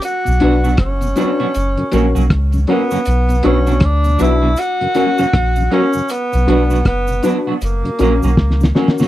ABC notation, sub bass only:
X:1
M:4/4
L:1/16
Q:"Swing 16ths" 1/4=79
K:Bm
V:1 name="Sub bass" clef=bass
z B,,, B,,,2 F,,,2 z2 F,,, z ^A,,, B,,, C,,2 z2 | B,,,2 B,,,2 D,,2 B,,,2 z4 ^A,,,2 z2 | z B,,, B,,,2 F,,,2 z2 F,,, z ^A,,, B,,, C,,2 z2 |]